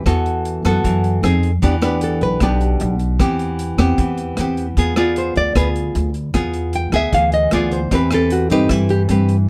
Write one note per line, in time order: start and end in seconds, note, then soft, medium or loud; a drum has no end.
0.06 0.61 E2 medium
0.06 0.82 E3 soft
0.06 0.62 B3 medium
0.06 0.62 F#4 medium
0.06 0.62 A4 medium
0.06 kick medium
0.06 cross-stick medium
0.06 closed hi-hat soft
0.26 closed hi-hat soft
0.45 closed hi-hat soft
0.65 0.83 F#2 medium
0.65 1.20 B3 medium
0.65 1.21 F#4 medium
0.65 1.21 A4 medium
0.65 cross-stick medium
0.65 closed hi-hat soft
0.84 1.21 F#2 medium
0.84 1.22 E3 soft
0.84 kick medium
0.84 closed hi-hat soft
1.04 closed hi-hat soft
1.23 1.60 F2 loud
1.23 1.50 C4 medium
1.23 1.50 D#4 soft
1.23 1.50 G#4 medium
1.23 cross-stick medium
1.23 closed hi-hat soft
1.43 closed hi-hat soft
1.62 2.18 E2 medium
1.62 2.39 E3 medium
1.62 1.74 B3 medium
1.62 1.75 D4 medium
1.62 1.75 G4 medium
1.62 kick medium
1.62 closed hi-hat soft
1.82 2.38 B3 medium
1.82 2.38 D4 medium
1.82 2.38 G4 medium
1.82 2.01 B4 medium
1.82 cross-stick medium
1.82 closed hi-hat soft
2.01 2.22 A4 medium
2.01 closed hi-hat soft
2.21 2.40 B1 medium
2.21 2.41 B4 medium
2.21 closed hi-hat soft
2.40 2.78 B1 medium
2.40 3.18 B2 medium
2.40 2.94 B3 medium
2.40 2.94 D4 soft
2.40 2.95 G4 medium
2.40 kick medium
2.40 cross-stick medium
2.40 closed hi-hat soft
2.45 2.62 G4 medium
2.61 closed hi-hat soft
2.80 3.17 B1 loud
2.80 closed hi-hat soft
2.99 closed hi-hat soft
3.19 3.75 E2 medium
3.19 3.96 E3 medium
3.19 3.75 B3 medium
3.19 3.76 C4 medium
3.19 3.76 G4 medium
3.19 kick medium
3.19 cross-stick medium
3.19 closed hi-hat soft
3.39 closed hi-hat soft
3.59 closed hi-hat soft
3.78 3.97 E2 medium
3.78 4.35 B3 medium
3.78 4.34 C4 medium
3.78 4.35 G4 medium
3.78 cross-stick medium
3.78 closed hi-hat soft
3.98 4.35 E2 medium
3.98 4.75 E3 medium
3.98 kick medium
3.98 closed hi-hat soft
4.18 closed hi-hat soft
4.37 4.74 E2 medium
4.37 4.65 B3 soft
4.37 4.65 C4 soft
4.37 4.65 G4 medium
4.37 cross-stick medium
4.37 closed hi-hat soft
4.57 closed hi-hat soft
4.77 5.32 E2 medium
4.77 4.94 B3 medium
4.77 4.94 F4 medium
4.77 4.94 G#4 medium
4.77 kick medium
4.77 closed hi-hat soft
4.96 5.52 B3 medium
4.96 5.53 F4 medium
4.96 5.53 G#4 medium
4.96 5.16 D5 medium
4.96 cross-stick medium
4.96 closed hi-hat soft
5.16 5.36 C5 medium
5.16 closed hi-hat soft
5.36 5.54 D2 medium
5.36 5.56 D5 loud
5.36 closed hi-hat soft
5.55 5.92 D2 medium
5.55 6.08 B3 medium
5.55 6.08 F4 medium
5.55 6.09 G#4 medium
5.55 5.68 B4 medium
5.55 kick medium
5.55 cross-stick medium
5.55 closed hi-hat soft
5.76 closed hi-hat soft
5.95 6.32 D2 loud
5.95 closed hi-hat soft
6.14 closed hi-hat soft
6.34 6.89 E2 loud
6.34 6.90 B3 soft
6.34 6.90 F4 medium
6.34 6.90 G#4 medium
6.34 kick medium
6.34 cross-stick medium
6.34 closed hi-hat soft
6.53 closed hi-hat soft
6.73 6.94 G5 medium
6.73 closed hi-hat soft
6.92 7.11 D2 medium
6.92 7.49 B3 medium
6.92 7.49 G#4 medium
6.92 7.14 E5 medium
6.92 cross-stick medium
6.92 closed hi-hat soft
7.13 7.49 D2 medium
7.13 7.90 E3 medium
7.13 7.33 F5 medium
7.13 kick medium
7.13 closed hi-hat soft
7.32 7.52 D#5 medium
7.32 closed hi-hat soft
7.51 7.88 D2 loud
7.51 7.79 B3 medium
7.51 7.79 F4 medium
7.51 7.79 G#4 medium
7.51 7.72 D5 medium
7.51 cross-stick medium
7.51 closed hi-hat soft
7.71 7.91 C5 medium
7.71 closed hi-hat soft
7.91 8.46 E2 medium
7.91 8.68 E3 medium
7.91 8.08 C4 medium
7.91 8.08 G4 medium
7.91 8.08 B4 medium
7.91 8.12 B4 medium
7.91 kick medium
7.91 closed hi-hat soft
8.11 8.47 C4 medium
8.11 8.48 G4 medium
8.11 8.32 A4 medium
8.11 8.48 B4 medium
8.11 cross-stick medium
8.11 closed hi-hat soft
8.30 8.51 F#4 medium
8.30 closed hi-hat soft
8.50 8.69 G2 medium
8.50 9.07 C4 medium
8.50 8.71 D#4 medium
8.50 9.07 G4 medium
8.50 9.07 B4 medium
8.50 closed hi-hat soft
8.69 9.06 G2 medium
8.69 9.47 E3 medium
8.69 8.89 E4 medium
8.69 kick medium
8.69 cross-stick medium
8.69 closed hi-hat soft
8.89 9.02 G4 medium
8.89 closed hi-hat soft
9.09 9.45 G2 loud
9.09 9.35 C4 medium
9.09 9.35 G4 medium
9.09 9.35 B4 medium
9.09 closed hi-hat soft
9.29 closed hi-hat soft